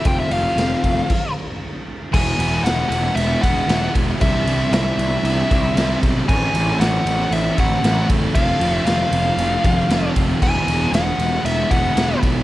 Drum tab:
CC |----x---|x-------|--------|x-------|
RD |xxxx----|-xxxxxxx|xxxxxxxx|-xxxxxxx|
SD |--o-----|--o---o-|--o---o-|--o---o-|
BD |o--oo---|o----o-o|o----o-o|o----o-o|

CC |--------|x-------|
RD |xxxxxxxx|-xxxxxxx|
SD |--o---o-|--o---o-|
BD |o----o-o|o----o-o|